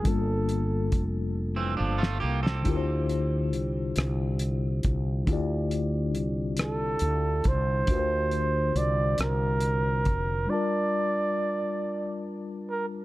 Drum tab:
HH |x-x-x-------|x-x-x-x-x-x-|x-x-x-x-x-x-|x-x-x-x-x-x-|
SD |---------o-o|------r-----|------r-----|------r-----|
BD |o---o-------|o---------o-|o---------o-|o---------o-|

HH |------------|
SD |------------|
BD |------------|